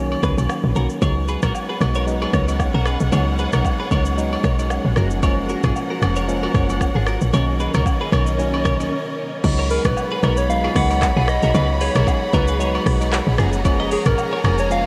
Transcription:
Already playing: B1 D#3 F#3 A#3 C#4
0.12 high agogo
0.23 C#2 G#4 B4, kick, cross-stick, shaker
0.37 B1 D#3 F#3 A#3 C#4, high agogo, shaker
0.49 cross-stick, low woodblock, shaker
0.64 A#1
0.75 B1 D#3 F#3 A#3 C#4 F#4 A#4, shaker
0.90 shaker
1.02 C#2 F#3 G#3 B3 C#4 D#4 G#4 B4 C#5 F#5, kick, high agogo, shaker
1.28 G#4 B4, shaker
1.42 A#1 F#4 A#4, kick, cross-stick, high agogo, shaker
1.55 low woodblock, shaker
1.69 G#4 B4
1.81 B1 F#3 G#3 B3 D#4, cross-stick, high agogo, shaker
1.95 A#4 C#5, shaker
2.07 F#3 G#3 B3 D#4, shaker
2.22 G#4 B4, high agogo
2.33 C#2 A#4 C#5, kick, cross-stick, shaker
2.48 F#3 G#3 B3 D#4, high agogo, shaker
2.59 kick, cross-stick, low woodblock, shaker
2.74 B1 F#4 A#4
2.86 G#4 B4, cross-stick, shaker
3.00 B1, shaker
3.12 C#2 F#3 G#3 B3 D#4 G#4 C#5, high agogo, shaker
3.39 G#4 B4, shaker
3.53 B1 F#4 A#4, cross-stick, mid tom, high agogo, shaker
3.65 kick, low woodblock, shaker
3.80 G#4 B4
3.91 C#2 F#3 G#3 B3 D#4 A#4 C#5, kick, high agogo, shaker
4.05 shaker
4.17 F#3 G#3 B3 D#4, shaker
4.33 high agogo
4.44 B1 A#4 C#5, kick, cross-stick, shaker
4.58 F#3 G#3 B3 D#4, high agogo, shaker
4.70 cross-stick, low woodblock, shaker
4.85 A#1
4.96 F#1 F3 G#3 A#3 C#4 F#4 A#4 F#5, cross-stick, shaker
5.11 shaker
5.23 F3 G#3 A#3 C#4 A#4 C#5, kick, high agogo, shaker
5.49 F#4 A#4, shaker
5.63 G#1 F4 G#4, kick, cross-stick, mid tom, high agogo, shaker
5.76 low woodblock, shaker
5.90 F#4 A#4
6.02 F1 F3 G#3 A#3 C#4, cross-stick, high agogo, shaker
6.16 A#4 C#5, shaker
6.28 F3 G#3 A#3 C#4, shaker
6.43 F#4 A#4, high agogo
6.54 F#1 A#4 C#5, kick, cross-stick, shaker
6.69 F3 G#3 A#3 C#4, high agogo, shaker
6.81 kick, cross-stick, low woodblock, shaker
6.95 G#1 F4 G#4
7.07 F#4 A#4, cross-stick, shaker
7.21 A#1, shaker
7.33 B1 D#3 F#3 A#3 C#4 A#4 C#5 D#5, high agogo, shaker
7.60 G#4 B4, shaker
7.74 C#2 F#4 A#4, cross-stick, mid tom, high agogo, shaker
7.86 kick, low woodblock, shaker
8.01 G#4 B4
8.12 B1 D#3 F#3 A#3 C#4 A#4 C#5, kick, cross-stick, high agogo, shaker
8.27 shaker
8.39 D#3 F#3 A#3 C#4, shaker
8.54 high agogo
8.65 C#2 A#4 C#5, kick, cross-stick, mid tom, shaker
8.79 D#3 F#3 A#3 C#4, high agogo, shaker
9.44 C#2 F#3 G#3 B3 D#4 G#4 C#5 F#5 B5, kick, crash, high agogo, shaker
9.59 A#4 C#5
9.70 G#4 A#4 B4, open hi-hat, shaker
9.85 A#1 B4, kick, cross-stick, mid tom, high agogo, shaker
9.97 low woodblock, shaker
10.12 G#4 B4
10.23 B1 F#3 G#3 B3 D#4 F#4 A#4, cross-stick, high agogo, shaker
10.37 C#5, shaker
10.49 F#3 G#3 B3 D#4 F5, shaker
10.64 F4 G#4, high agogo
10.76 C#2 G#4 B4 F#5, kick, cross-stick, open hi-hat, shaker
10.90 F#3 G#3 B3 D#4, high agogo, shaker
11.02 kick, cross-stick, clap, low woodblock, shaker
11.16 B1 F4 G#4
11.28 D#5, cross-stick, shaker
11.42 B1 F#4 A#4, shaker
11.54 C#2 F#3 G#3 B3 D#4 G#4 B4, high agogo, shaker
11.81 G#4 B4 C#5, open hi-hat, shaker
11.95 B1 F#4 A#4, cross-stick, mid tom, high agogo, shaker
12.07 C#4 G#4, kick, low woodblock, shaker
12.33 C#2 F#3 G#3 B3 D#4 F#4 A#4 B4, kick, high agogo, shaker
12.48 G#4 B4, shaker
12.59 F#3 G#3 B3 D#4 G#4 C#5, shaker
12.75 high agogo
12.86 B1, kick, cross-stick, open hi-hat, shaker
13.00 F#3 G#3 B3 D#4, high agogo, shaker
13.12 F#4 A#4, cross-stick, clap, low woodblock, shaker
13.27 A#1
13.38 F#1 F3 G#3 A#3 C#4 F4 G#4 G#5 A#5, cross-stick, shaker
13.53 shaker
13.65 F3 G#3 A#3 C#4, kick, high agogo, shaker
13.80 B4 D#5
13.91 G#4 A#4 C#5, open hi-hat, shaker
14.06 G#1 A#4, kick, cross-stick, mid tom, high agogo, shaker
14.18 low woodblock, shaker
14.33 A#4 C#5
14.44 F1 F3 G#3 A#3 C#4 F#4 A#4, cross-stick, high agogo, shaker
14.58 C#5, shaker
14.70 F3 G#3 A#3 C#4 F5, shaker

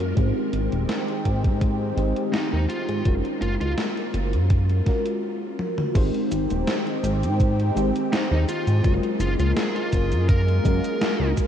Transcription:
Already playing: G#3 A#3 C#4 F4 F#4 A#4
0.00 F#2, closed hi-hat
0.15 G#1 D#3 G#3 C4 D#4 G4 C5, kick, closed hi-hat
0.53 G#1, closed hi-hat
0.72 D#1, closed hi-hat
0.89 snare, closed hi-hat
1.08 closed hi-hat
1.25 G#1, kick, closed hi-hat
1.44 G#2, kick, closed hi-hat
1.61 kick, closed hi-hat
1.96 G#1 G#3 C4 D#4 G4 C5, closed hi-hat
2.16 closed hi-hat
2.33 D#4, snare, closed hi-hat
2.52 D#2 D#4
2.69 F4, closed hi-hat
2.89 G#2, closed hi-hat
3.04 F#1 G#3 A#3 C#4 F4 F#4 A#4, kick, closed hi-hat
3.25 closed hi-hat
3.42 F#1 F4, closed hi-hat
3.61 C#2 F4, closed hi-hat
3.78 snare, closed hi-hat
3.97 closed hi-hat
4.14 F#1, closed hi-hat
4.33 F#2, closed hi-hat
4.50 kick, closed hi-hat
4.70 closed hi-hat
4.85 G#3 C#4 F4 F#4 A#4, kick, snare, closed hi-hat
5.06 closed hi-hat
5.59 high tom
5.78 mid tom
5.94 G#1 D#3 G#3 C4 D#4 G4 C5, kick, closed hi-hat, crash, cabasa
6.14 closed hi-hat
6.31 G#1, closed hi-hat, cabasa
6.50 D#1, closed hi-hat, cabasa
6.67 snare, closed hi-hat, cabasa
6.87 closed hi-hat
7.04 G#1, closed hi-hat, cabasa
7.23 G#2, closed hi-hat, cabasa
7.40 kick, closed hi-hat, cabasa
7.60 closed hi-hat
7.74 G#1 G#3 C4 D#4 G4 C5, closed hi-hat, cabasa
7.95 closed hi-hat, cabasa
8.12 D#4, snare, closed hi-hat, cabasa
8.31 D#2 D#4
8.49 F4, closed hi-hat, cabasa
8.67 G#2, closed hi-hat, cabasa
8.83 F#1 F#3 G#3 A#3 C#4 F4 A#4, kick, closed hi-hat, cabasa
9.03 closed hi-hat
9.20 F#1 F4, closed hi-hat, cabasa
9.39 C#2 F4, closed hi-hat, cabasa
9.57 G#4, snare, closed hi-hat, cabasa
9.75 F4, closed hi-hat
9.93 F#1, kick, closed hi-hat, cabasa
10.12 F#2, closed hi-hat, cabasa
10.29 A#4, kick, closed hi-hat, cabasa
10.48 closed hi-hat
10.64 F#1 G#3 C#4 F4 F#4 A#4, kick, closed hi-hat, cabasa
10.84 closed hi-hat, cabasa
11.01 snare, closed hi-hat, cabasa
11.20 C#2
11.37 kick, closed hi-hat, cabasa

